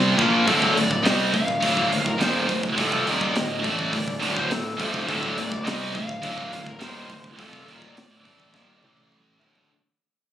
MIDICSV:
0, 0, Header, 1, 5, 480
1, 0, Start_track
1, 0, Tempo, 575816
1, 393, Time_signature, 4, 2, 24, 8
1, 8605, End_track
2, 0, Start_track
2, 0, Title_t, "Lead electric guitar"
2, 0, Program_c, 0, 29
2, 404, Note_on_c, 0, 69, 89
2, 621, Note_off_c, 0, 69, 0
2, 640, Note_on_c, 0, 74, 90
2, 865, Note_off_c, 0, 74, 0
2, 868, Note_on_c, 0, 75, 93
2, 1110, Note_off_c, 0, 75, 0
2, 1113, Note_on_c, 0, 77, 99
2, 1723, Note_on_c, 0, 70, 81
2, 1729, Note_off_c, 0, 77, 0
2, 1828, Note_off_c, 0, 70, 0
2, 1839, Note_on_c, 0, 72, 93
2, 2170, Note_off_c, 0, 72, 0
2, 2330, Note_on_c, 0, 69, 89
2, 2567, Note_off_c, 0, 69, 0
2, 2569, Note_on_c, 0, 74, 91
2, 2784, Note_off_c, 0, 74, 0
2, 2807, Note_on_c, 0, 75, 87
2, 3042, Note_off_c, 0, 75, 0
2, 3046, Note_on_c, 0, 74, 87
2, 3605, Note_off_c, 0, 74, 0
2, 3647, Note_on_c, 0, 72, 84
2, 3767, Note_off_c, 0, 72, 0
2, 3767, Note_on_c, 0, 69, 77
2, 4119, Note_off_c, 0, 69, 0
2, 4240, Note_on_c, 0, 69, 85
2, 4482, Note_on_c, 0, 74, 87
2, 4483, Note_off_c, 0, 69, 0
2, 4700, Note_off_c, 0, 74, 0
2, 4712, Note_on_c, 0, 75, 88
2, 4957, Note_off_c, 0, 75, 0
2, 4961, Note_on_c, 0, 77, 86
2, 5574, Note_off_c, 0, 77, 0
2, 5577, Note_on_c, 0, 70, 75
2, 5692, Note_off_c, 0, 70, 0
2, 5692, Note_on_c, 0, 72, 82
2, 6042, Note_off_c, 0, 72, 0
2, 6163, Note_on_c, 0, 69, 78
2, 6404, Note_off_c, 0, 69, 0
2, 6417, Note_on_c, 0, 74, 79
2, 6628, Note_off_c, 0, 74, 0
2, 6653, Note_on_c, 0, 74, 68
2, 7569, Note_off_c, 0, 74, 0
2, 8605, End_track
3, 0, Start_track
3, 0, Title_t, "Distorted electric guitar"
3, 0, Program_c, 1, 30
3, 0, Note_on_c, 1, 48, 90
3, 0, Note_on_c, 1, 55, 92
3, 0, Note_on_c, 1, 60, 102
3, 137, Note_off_c, 1, 48, 0
3, 141, Note_on_c, 1, 46, 82
3, 145, Note_off_c, 1, 55, 0
3, 148, Note_off_c, 1, 60, 0
3, 149, Note_on_c, 1, 53, 94
3, 156, Note_on_c, 1, 58, 89
3, 379, Note_off_c, 1, 46, 0
3, 383, Note_off_c, 1, 53, 0
3, 386, Note_on_c, 1, 38, 96
3, 387, Note_off_c, 1, 58, 0
3, 392, Note_on_c, 1, 45, 104
3, 399, Note_on_c, 1, 50, 98
3, 616, Note_off_c, 1, 38, 0
3, 618, Note_off_c, 1, 45, 0
3, 626, Note_on_c, 1, 38, 61
3, 628, Note_off_c, 1, 50, 0
3, 628, Note_on_c, 1, 45, 68
3, 821, Note_off_c, 1, 38, 0
3, 822, Note_off_c, 1, 45, 0
3, 855, Note_on_c, 1, 48, 85
3, 859, Note_on_c, 1, 55, 100
3, 864, Note_on_c, 1, 60, 92
3, 1095, Note_off_c, 1, 48, 0
3, 1098, Note_off_c, 1, 55, 0
3, 1100, Note_off_c, 1, 60, 0
3, 1101, Note_on_c, 1, 38, 59
3, 1105, Note_on_c, 1, 45, 70
3, 1298, Note_off_c, 1, 38, 0
3, 1299, Note_off_c, 1, 45, 0
3, 1336, Note_on_c, 1, 38, 83
3, 1345, Note_on_c, 1, 45, 91
3, 1353, Note_on_c, 1, 50, 97
3, 1569, Note_off_c, 1, 38, 0
3, 1574, Note_off_c, 1, 45, 0
3, 1579, Note_on_c, 1, 38, 57
3, 1584, Note_off_c, 1, 50, 0
3, 1584, Note_on_c, 1, 45, 65
3, 1776, Note_off_c, 1, 38, 0
3, 1779, Note_off_c, 1, 45, 0
3, 1819, Note_on_c, 1, 39, 92
3, 1826, Note_on_c, 1, 46, 91
3, 1831, Note_on_c, 1, 51, 98
3, 2058, Note_off_c, 1, 39, 0
3, 2061, Note_off_c, 1, 46, 0
3, 2063, Note_off_c, 1, 51, 0
3, 2066, Note_on_c, 1, 38, 60
3, 2068, Note_on_c, 1, 45, 70
3, 2260, Note_off_c, 1, 38, 0
3, 2261, Note_off_c, 1, 45, 0
3, 2307, Note_on_c, 1, 41, 87
3, 2315, Note_on_c, 1, 48, 103
3, 2320, Note_on_c, 1, 53, 100
3, 2541, Note_off_c, 1, 41, 0
3, 2545, Note_off_c, 1, 48, 0
3, 2548, Note_off_c, 1, 53, 0
3, 2549, Note_on_c, 1, 39, 80
3, 2554, Note_on_c, 1, 46, 85
3, 2562, Note_on_c, 1, 51, 95
3, 2782, Note_off_c, 1, 39, 0
3, 2785, Note_off_c, 1, 46, 0
3, 2785, Note_on_c, 1, 38, 63
3, 2789, Note_off_c, 1, 51, 0
3, 2789, Note_on_c, 1, 45, 70
3, 2980, Note_off_c, 1, 38, 0
3, 2982, Note_off_c, 1, 45, 0
3, 3024, Note_on_c, 1, 45, 82
3, 3029, Note_on_c, 1, 52, 92
3, 3032, Note_on_c, 1, 57, 97
3, 3257, Note_off_c, 1, 45, 0
3, 3262, Note_off_c, 1, 52, 0
3, 3264, Note_off_c, 1, 57, 0
3, 3265, Note_on_c, 1, 38, 67
3, 3267, Note_on_c, 1, 45, 70
3, 3460, Note_off_c, 1, 38, 0
3, 3461, Note_off_c, 1, 45, 0
3, 3499, Note_on_c, 1, 38, 92
3, 3507, Note_on_c, 1, 45, 82
3, 3508, Note_on_c, 1, 50, 85
3, 3737, Note_off_c, 1, 38, 0
3, 3741, Note_off_c, 1, 45, 0
3, 3742, Note_off_c, 1, 50, 0
3, 3747, Note_on_c, 1, 38, 58
3, 3752, Note_on_c, 1, 45, 69
3, 3941, Note_off_c, 1, 38, 0
3, 3943, Note_off_c, 1, 45, 0
3, 3983, Note_on_c, 1, 41, 81
3, 3990, Note_on_c, 1, 48, 88
3, 3995, Note_on_c, 1, 53, 93
3, 4219, Note_off_c, 1, 41, 0
3, 4222, Note_on_c, 1, 38, 101
3, 4223, Note_off_c, 1, 48, 0
3, 4226, Note_off_c, 1, 53, 0
3, 4228, Note_on_c, 1, 45, 97
3, 4234, Note_on_c, 1, 50, 101
3, 4459, Note_off_c, 1, 38, 0
3, 4462, Note_off_c, 1, 45, 0
3, 4465, Note_off_c, 1, 50, 0
3, 4474, Note_on_c, 1, 38, 64
3, 4476, Note_on_c, 1, 45, 68
3, 4664, Note_off_c, 1, 38, 0
3, 4666, Note_off_c, 1, 45, 0
3, 4709, Note_on_c, 1, 48, 80
3, 4717, Note_on_c, 1, 55, 85
3, 4719, Note_on_c, 1, 60, 89
3, 4943, Note_off_c, 1, 48, 0
3, 4945, Note_off_c, 1, 55, 0
3, 4947, Note_on_c, 1, 38, 61
3, 4948, Note_off_c, 1, 60, 0
3, 4949, Note_on_c, 1, 45, 69
3, 5141, Note_off_c, 1, 38, 0
3, 5142, Note_off_c, 1, 45, 0
3, 5190, Note_on_c, 1, 38, 79
3, 5193, Note_on_c, 1, 45, 93
3, 5199, Note_on_c, 1, 50, 88
3, 5419, Note_off_c, 1, 38, 0
3, 5421, Note_off_c, 1, 45, 0
3, 5428, Note_off_c, 1, 50, 0
3, 5429, Note_on_c, 1, 38, 59
3, 5431, Note_on_c, 1, 45, 69
3, 5622, Note_off_c, 1, 38, 0
3, 5623, Note_off_c, 1, 45, 0
3, 5658, Note_on_c, 1, 39, 81
3, 5666, Note_on_c, 1, 46, 88
3, 5670, Note_on_c, 1, 51, 95
3, 5897, Note_off_c, 1, 39, 0
3, 5901, Note_off_c, 1, 46, 0
3, 5903, Note_off_c, 1, 51, 0
3, 5905, Note_on_c, 1, 38, 56
3, 5907, Note_on_c, 1, 45, 66
3, 6100, Note_off_c, 1, 38, 0
3, 6101, Note_off_c, 1, 45, 0
3, 6136, Note_on_c, 1, 41, 89
3, 6142, Note_on_c, 1, 48, 95
3, 6145, Note_on_c, 1, 53, 97
3, 6374, Note_off_c, 1, 41, 0
3, 6378, Note_on_c, 1, 39, 79
3, 6379, Note_off_c, 1, 48, 0
3, 6381, Note_off_c, 1, 53, 0
3, 6385, Note_on_c, 1, 46, 80
3, 6389, Note_on_c, 1, 51, 87
3, 6617, Note_off_c, 1, 39, 0
3, 6621, Note_off_c, 1, 46, 0
3, 6623, Note_off_c, 1, 51, 0
3, 6628, Note_on_c, 1, 38, 55
3, 6632, Note_on_c, 1, 45, 65
3, 6822, Note_off_c, 1, 38, 0
3, 6824, Note_off_c, 1, 45, 0
3, 6860, Note_on_c, 1, 45, 72
3, 6863, Note_on_c, 1, 52, 85
3, 6871, Note_on_c, 1, 57, 81
3, 7095, Note_off_c, 1, 45, 0
3, 7098, Note_on_c, 1, 39, 77
3, 7100, Note_off_c, 1, 52, 0
3, 7104, Note_off_c, 1, 57, 0
3, 7106, Note_on_c, 1, 46, 81
3, 7110, Note_on_c, 1, 51, 85
3, 7342, Note_off_c, 1, 39, 0
3, 7342, Note_on_c, 1, 45, 77
3, 7350, Note_off_c, 1, 46, 0
3, 7350, Note_on_c, 1, 52, 88
3, 7355, Note_off_c, 1, 51, 0
3, 7355, Note_on_c, 1, 57, 85
3, 7820, Note_off_c, 1, 45, 0
3, 7823, Note_off_c, 1, 52, 0
3, 7826, Note_off_c, 1, 57, 0
3, 7830, Note_on_c, 1, 38, 70
3, 7833, Note_on_c, 1, 45, 82
3, 7838, Note_on_c, 1, 50, 86
3, 8063, Note_off_c, 1, 38, 0
3, 8065, Note_off_c, 1, 45, 0
3, 8068, Note_off_c, 1, 50, 0
3, 8605, End_track
4, 0, Start_track
4, 0, Title_t, "Fingered electric bass"
4, 0, Program_c, 2, 33
4, 0, Note_on_c, 2, 36, 98
4, 123, Note_off_c, 2, 36, 0
4, 156, Note_on_c, 2, 34, 97
4, 377, Note_off_c, 2, 34, 0
4, 396, Note_on_c, 2, 26, 90
4, 617, Note_off_c, 2, 26, 0
4, 639, Note_on_c, 2, 26, 75
4, 859, Note_off_c, 2, 26, 0
4, 877, Note_on_c, 2, 36, 94
4, 1097, Note_off_c, 2, 36, 0
4, 1114, Note_on_c, 2, 26, 77
4, 1336, Note_off_c, 2, 26, 0
4, 1357, Note_on_c, 2, 26, 82
4, 1577, Note_off_c, 2, 26, 0
4, 1600, Note_on_c, 2, 26, 77
4, 1818, Note_off_c, 2, 26, 0
4, 1835, Note_on_c, 2, 27, 91
4, 2056, Note_off_c, 2, 27, 0
4, 2077, Note_on_c, 2, 26, 78
4, 2297, Note_off_c, 2, 26, 0
4, 2320, Note_on_c, 2, 29, 96
4, 2538, Note_off_c, 2, 29, 0
4, 2557, Note_on_c, 2, 27, 87
4, 2777, Note_off_c, 2, 27, 0
4, 2796, Note_on_c, 2, 26, 80
4, 3016, Note_off_c, 2, 26, 0
4, 3039, Note_on_c, 2, 33, 89
4, 3258, Note_off_c, 2, 33, 0
4, 3276, Note_on_c, 2, 26, 73
4, 3497, Note_off_c, 2, 26, 0
4, 3519, Note_on_c, 2, 26, 93
4, 3738, Note_off_c, 2, 26, 0
4, 3760, Note_on_c, 2, 26, 78
4, 3979, Note_off_c, 2, 26, 0
4, 3999, Note_on_c, 2, 29, 87
4, 4218, Note_off_c, 2, 29, 0
4, 4237, Note_on_c, 2, 26, 91
4, 4457, Note_off_c, 2, 26, 0
4, 4480, Note_on_c, 2, 26, 74
4, 4699, Note_off_c, 2, 26, 0
4, 4713, Note_on_c, 2, 36, 90
4, 4935, Note_off_c, 2, 36, 0
4, 4961, Note_on_c, 2, 26, 74
4, 5179, Note_off_c, 2, 26, 0
4, 5199, Note_on_c, 2, 26, 81
4, 5418, Note_off_c, 2, 26, 0
4, 5433, Note_on_c, 2, 26, 81
4, 5656, Note_off_c, 2, 26, 0
4, 5673, Note_on_c, 2, 27, 90
4, 5895, Note_off_c, 2, 27, 0
4, 5916, Note_on_c, 2, 26, 73
4, 6137, Note_off_c, 2, 26, 0
4, 6159, Note_on_c, 2, 29, 90
4, 6379, Note_off_c, 2, 29, 0
4, 6397, Note_on_c, 2, 27, 83
4, 6618, Note_off_c, 2, 27, 0
4, 6637, Note_on_c, 2, 26, 75
4, 6858, Note_off_c, 2, 26, 0
4, 6880, Note_on_c, 2, 33, 83
4, 7099, Note_off_c, 2, 33, 0
4, 7118, Note_on_c, 2, 27, 78
4, 7338, Note_off_c, 2, 27, 0
4, 7365, Note_on_c, 2, 33, 86
4, 7805, Note_off_c, 2, 33, 0
4, 7835, Note_on_c, 2, 26, 81
4, 8056, Note_off_c, 2, 26, 0
4, 8605, End_track
5, 0, Start_track
5, 0, Title_t, "Drums"
5, 157, Note_on_c, 9, 36, 108
5, 240, Note_off_c, 9, 36, 0
5, 396, Note_on_c, 9, 46, 78
5, 397, Note_on_c, 9, 36, 109
5, 480, Note_off_c, 9, 36, 0
5, 480, Note_off_c, 9, 46, 0
5, 517, Note_on_c, 9, 36, 82
5, 601, Note_off_c, 9, 36, 0
5, 644, Note_on_c, 9, 46, 57
5, 727, Note_off_c, 9, 46, 0
5, 757, Note_on_c, 9, 36, 84
5, 840, Note_off_c, 9, 36, 0
5, 879, Note_on_c, 9, 46, 70
5, 886, Note_on_c, 9, 38, 109
5, 962, Note_off_c, 9, 46, 0
5, 970, Note_off_c, 9, 38, 0
5, 1115, Note_on_c, 9, 36, 83
5, 1119, Note_on_c, 9, 46, 50
5, 1199, Note_off_c, 9, 36, 0
5, 1203, Note_off_c, 9, 46, 0
5, 1235, Note_on_c, 9, 36, 75
5, 1318, Note_off_c, 9, 36, 0
5, 1355, Note_on_c, 9, 36, 97
5, 1359, Note_on_c, 9, 46, 69
5, 1438, Note_off_c, 9, 36, 0
5, 1442, Note_off_c, 9, 46, 0
5, 1476, Note_on_c, 9, 36, 77
5, 1559, Note_off_c, 9, 36, 0
5, 1604, Note_on_c, 9, 46, 52
5, 1687, Note_off_c, 9, 46, 0
5, 1717, Note_on_c, 9, 36, 84
5, 1800, Note_off_c, 9, 36, 0
5, 1839, Note_on_c, 9, 46, 66
5, 1847, Note_on_c, 9, 38, 99
5, 1923, Note_off_c, 9, 46, 0
5, 1930, Note_off_c, 9, 38, 0
5, 2076, Note_on_c, 9, 36, 78
5, 2078, Note_on_c, 9, 46, 51
5, 2160, Note_off_c, 9, 36, 0
5, 2161, Note_off_c, 9, 46, 0
5, 2196, Note_on_c, 9, 36, 81
5, 2279, Note_off_c, 9, 36, 0
5, 2316, Note_on_c, 9, 36, 101
5, 2316, Note_on_c, 9, 46, 70
5, 2399, Note_off_c, 9, 36, 0
5, 2400, Note_off_c, 9, 46, 0
5, 2435, Note_on_c, 9, 36, 83
5, 2519, Note_off_c, 9, 36, 0
5, 2560, Note_on_c, 9, 46, 54
5, 2644, Note_off_c, 9, 46, 0
5, 2677, Note_on_c, 9, 36, 83
5, 2760, Note_off_c, 9, 36, 0
5, 2798, Note_on_c, 9, 46, 74
5, 2805, Note_on_c, 9, 38, 108
5, 2881, Note_off_c, 9, 46, 0
5, 2889, Note_off_c, 9, 38, 0
5, 3037, Note_on_c, 9, 36, 81
5, 3038, Note_on_c, 9, 46, 51
5, 3120, Note_off_c, 9, 36, 0
5, 3122, Note_off_c, 9, 46, 0
5, 3157, Note_on_c, 9, 36, 74
5, 3240, Note_off_c, 9, 36, 0
5, 3276, Note_on_c, 9, 36, 90
5, 3276, Note_on_c, 9, 46, 73
5, 3359, Note_off_c, 9, 46, 0
5, 3360, Note_off_c, 9, 36, 0
5, 3398, Note_on_c, 9, 36, 78
5, 3481, Note_off_c, 9, 36, 0
5, 3522, Note_on_c, 9, 46, 55
5, 3605, Note_off_c, 9, 46, 0
5, 3639, Note_on_c, 9, 36, 84
5, 3723, Note_off_c, 9, 36, 0
5, 3760, Note_on_c, 9, 46, 75
5, 3767, Note_on_c, 9, 38, 108
5, 3843, Note_off_c, 9, 46, 0
5, 3851, Note_off_c, 9, 38, 0
5, 3999, Note_on_c, 9, 36, 84
5, 4004, Note_on_c, 9, 46, 57
5, 4082, Note_off_c, 9, 36, 0
5, 4087, Note_off_c, 9, 46, 0
5, 4118, Note_on_c, 9, 36, 82
5, 4202, Note_off_c, 9, 36, 0
5, 4239, Note_on_c, 9, 36, 90
5, 4240, Note_on_c, 9, 46, 75
5, 4323, Note_off_c, 9, 36, 0
5, 4323, Note_off_c, 9, 46, 0
5, 4359, Note_on_c, 9, 36, 81
5, 4442, Note_off_c, 9, 36, 0
5, 4483, Note_on_c, 9, 46, 54
5, 4567, Note_off_c, 9, 46, 0
5, 4599, Note_on_c, 9, 36, 81
5, 4682, Note_off_c, 9, 36, 0
5, 4727, Note_on_c, 9, 46, 69
5, 4734, Note_on_c, 9, 38, 112
5, 4810, Note_off_c, 9, 46, 0
5, 4817, Note_off_c, 9, 38, 0
5, 4960, Note_on_c, 9, 36, 73
5, 4964, Note_on_c, 9, 46, 47
5, 5043, Note_off_c, 9, 36, 0
5, 5048, Note_off_c, 9, 46, 0
5, 5079, Note_on_c, 9, 36, 74
5, 5162, Note_off_c, 9, 36, 0
5, 5195, Note_on_c, 9, 46, 66
5, 5197, Note_on_c, 9, 36, 90
5, 5278, Note_off_c, 9, 46, 0
5, 5280, Note_off_c, 9, 36, 0
5, 5316, Note_on_c, 9, 36, 75
5, 5399, Note_off_c, 9, 36, 0
5, 5443, Note_on_c, 9, 46, 51
5, 5526, Note_off_c, 9, 46, 0
5, 5556, Note_on_c, 9, 36, 83
5, 5639, Note_off_c, 9, 36, 0
5, 5674, Note_on_c, 9, 46, 67
5, 5681, Note_on_c, 9, 38, 99
5, 5757, Note_off_c, 9, 46, 0
5, 5765, Note_off_c, 9, 38, 0
5, 5916, Note_on_c, 9, 36, 79
5, 5918, Note_on_c, 9, 46, 50
5, 5999, Note_off_c, 9, 36, 0
5, 6001, Note_off_c, 9, 46, 0
5, 6037, Note_on_c, 9, 36, 80
5, 6120, Note_off_c, 9, 36, 0
5, 6157, Note_on_c, 9, 36, 93
5, 6159, Note_on_c, 9, 46, 71
5, 6241, Note_off_c, 9, 36, 0
5, 6243, Note_off_c, 9, 46, 0
5, 6278, Note_on_c, 9, 36, 77
5, 6361, Note_off_c, 9, 36, 0
5, 6405, Note_on_c, 9, 46, 50
5, 6488, Note_off_c, 9, 46, 0
5, 6518, Note_on_c, 9, 36, 79
5, 6601, Note_off_c, 9, 36, 0
5, 6644, Note_on_c, 9, 46, 69
5, 6652, Note_on_c, 9, 38, 102
5, 6728, Note_off_c, 9, 46, 0
5, 6735, Note_off_c, 9, 38, 0
5, 6880, Note_on_c, 9, 36, 75
5, 6886, Note_on_c, 9, 46, 49
5, 6963, Note_off_c, 9, 36, 0
5, 6969, Note_off_c, 9, 46, 0
5, 6999, Note_on_c, 9, 36, 71
5, 7083, Note_off_c, 9, 36, 0
5, 7117, Note_on_c, 9, 36, 86
5, 7127, Note_on_c, 9, 38, 57
5, 7201, Note_off_c, 9, 36, 0
5, 7210, Note_off_c, 9, 38, 0
5, 7358, Note_on_c, 9, 48, 62
5, 7441, Note_off_c, 9, 48, 0
5, 7480, Note_on_c, 9, 48, 60
5, 7563, Note_off_c, 9, 48, 0
5, 7602, Note_on_c, 9, 47, 73
5, 7685, Note_off_c, 9, 47, 0
5, 7848, Note_on_c, 9, 43, 79
5, 7931, Note_off_c, 9, 43, 0
5, 7963, Note_on_c, 9, 43, 81
5, 8047, Note_off_c, 9, 43, 0
5, 8605, End_track
0, 0, End_of_file